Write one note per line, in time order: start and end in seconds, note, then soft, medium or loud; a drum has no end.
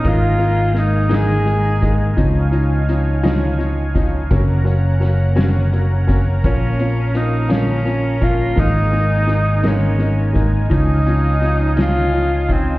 0.00 0.30 G#3 medium
0.00 0.10 D#4 medium
0.00 2.15 A#4 medium
0.00 2.15 A#5 medium
0.05 2.14 G#1 loud
0.05 0.31 A#3 medium
0.05 0.31 D#4 medium
0.05 4.27 D#4 medium
0.05 4.27 G#5 medium
0.05 kick loud
0.05 closed hi-hat medium
0.09 0.81 F4 loud
0.38 0.65 G#3 medium
0.38 0.65 A#3 medium
0.38 0.66 D#4 medium
0.38 closed hi-hat medium
0.74 1.01 G#3 medium
0.74 1.01 A#3 medium
0.74 1.01 D#4 medium
0.74 closed hi-hat medium
0.79 1.16 D#4 medium
1.09 1.36 G#3 medium
1.09 1.37 A#3 medium
1.09 1.36 D#4 loud
1.09 snare loud
1.09 closed hi-hat medium
1.15 1.93 G#4 loud
1.45 1.72 G#3 medium
1.45 1.72 A#3 medium
1.45 1.72 D#4 medium
1.45 closed hi-hat medium
1.81 2.08 G#3 medium
1.81 2.08 A#3 medium
1.81 2.08 D#4 medium
1.81 kick medium
1.81 closed hi-hat medium
2.17 4.27 C#2 medium
2.17 2.43 F3 medium
2.17 2.43 C#4 medium
2.17 2.43 D#4 medium
2.17 4.29 C#5 medium
2.17 4.29 F5 medium
2.17 kick loud
2.17 closed hi-hat medium
2.51 2.78 F3 medium
2.51 2.78 C#4 medium
2.51 2.79 D#4 medium
2.51 closed hi-hat medium
2.89 3.15 F3 medium
2.89 3.15 C#4 medium
2.89 3.15 D#4 medium
2.89 closed hi-hat medium
3.23 3.50 F3 medium
3.23 3.50 C#4 medium
3.23 3.50 D#4 loud
3.23 snare loud
3.23 closed hi-hat medium
3.58 3.85 F3 medium
3.58 3.85 C#4 medium
3.58 3.85 D#4 medium
3.58 closed hi-hat medium
3.94 4.21 F3 medium
3.94 4.21 C#4 medium
3.94 4.21 D#4 medium
3.94 kick medium
3.94 closed hi-hat medium
4.30 6.40 F#1 medium
4.30 4.57 F#3 medium
4.30 4.57 A#3 medium
4.30 8.53 C#4 medium
4.30 4.57 C#4 medium
4.30 10.67 A#4 medium
4.30 6.42 F#5 medium
4.30 10.67 A#5 medium
4.30 kick loud
4.30 closed hi-hat medium
4.64 4.91 F#3 medium
4.64 4.92 A#3 medium
4.64 4.92 C#4 medium
4.64 closed hi-hat soft
5.00 5.27 F#3 medium
5.00 5.27 A#3 medium
5.00 5.28 C#4 medium
5.00 snare soft
5.00 closed hi-hat medium
5.36 5.63 F#3 loud
5.36 5.63 A#3 medium
5.36 5.63 C#4 loud
5.36 snare loud
5.36 closed hi-hat medium
5.72 5.99 F#3 medium
5.72 5.99 A#3 medium
5.72 5.99 C#4 medium
5.72 closed hi-hat medium
6.07 6.34 F#3 medium
6.07 6.34 A#3 medium
6.07 6.34 C#4 medium
6.07 kick medium
6.07 closed hi-hat medium
6.44 8.54 A#1 medium
6.44 6.70 F3 medium
6.44 6.70 A#3 medium
6.44 6.71 C#4 medium
6.44 7.18 C#4 loud
6.44 8.55 F5 medium
6.44 kick loud
6.44 closed hi-hat medium
6.79 7.06 F3 medium
6.79 7.05 A#3 medium
6.79 7.06 C#4 medium
6.79 closed hi-hat soft
7.14 7.41 F3 medium
7.14 7.41 A#3 medium
7.14 7.41 C#4 medium
7.14 7.54 D#4 medium
7.14 closed hi-hat medium
7.49 7.76 F3 loud
7.49 7.76 A#3 medium
7.49 7.76 C#4 loud
7.49 8.25 C#4 loud
7.49 snare loud
7.49 closed hi-hat loud
7.85 8.11 F3 medium
7.85 8.12 A#3 medium
7.85 8.12 C#4 medium
7.85 closed hi-hat medium
8.21 8.47 F3 medium
8.21 8.48 A#3 medium
8.21 8.48 C#4 medium
8.21 8.61 F4 loud
8.21 kick medium
8.21 closed hi-hat medium
8.55 10.67 G#1 loud
8.55 8.83 G#3 medium
8.55 8.82 A#3 medium
8.55 8.82 D#4 medium
8.55 12.79 D#4 medium
8.55 12.79 G#5 medium
8.55 kick loud
8.55 closed hi-hat medium
8.60 9.68 D#4 loud
8.91 9.18 G#3 medium
8.91 9.18 A#3 medium
8.91 9.19 D#4 medium
8.91 closed hi-hat soft
9.27 9.54 G#3 medium
9.27 9.54 A#3 medium
9.27 9.54 D#4 medium
9.27 snare soft
9.27 closed hi-hat medium
9.63 9.90 G#3 medium
9.63 9.90 A#3 medium
9.63 10.37 C#4 medium
9.63 9.90 D#4 medium
9.63 snare loud
9.63 closed hi-hat medium
9.98 10.25 G#3 medium
9.98 10.26 A#3 medium
9.98 10.26 D#4 medium
9.98 closed hi-hat medium
10.33 10.60 G#3 medium
10.33 10.60 A#3 medium
10.33 10.61 D#4 medium
10.33 kick medium
10.33 closed hi-hat medium
10.70 12.79 C#2 medium
10.70 10.96 F3 medium
10.70 10.96 C#4 medium
10.70 10.96 D#4 medium
10.70 12.79 D#5 medium
10.70 12.79 F5 medium
10.70 kick loud
10.70 closed hi-hat medium
10.74 11.75 D#4 medium
11.06 11.32 F3 medium
11.06 11.32 C#4 medium
11.06 11.32 D#4 medium
11.06 closed hi-hat medium
11.41 11.68 F3 medium
11.41 11.68 C#4 medium
11.41 11.68 D#4 medium
11.41 closed hi-hat medium
11.76 12.03 F3 medium
11.76 12.03 C#4 medium
11.76 12.03 D#4 loud
11.76 snare medium
11.76 closed hi-hat medium
11.82 12.54 F4 loud
12.12 12.39 F3 medium
12.12 12.39 C#4 medium
12.12 12.39 D#4 medium
12.12 closed hi-hat medium
12.48 12.74 F3 medium
12.48 12.75 C#4 medium
12.48 12.75 D#4 medium
12.48 kick medium
12.48 closed hi-hat medium
12.53 12.79 C4 medium